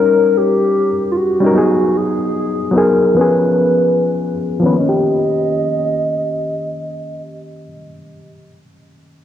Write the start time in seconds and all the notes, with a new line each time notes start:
Already playing: G3 C#4 D#4 A#4
0.37 G4
1.12 F4
1.16 F#4
1.40 G3 C#4
1.44 D#4 A#4
1.51 F#3 B3
1.56 D#4 G#4
1.97 G#4
2.71 F#3 B3
2.76 D#4 G#4 A#4
3.15 F3 B3 B4
3.19 C#4 G#4
4.60 D#3 F3 B3
4.64 C#4 B4
4.72 A#3
4.76 D#5
4.81 C#4
4.89 G4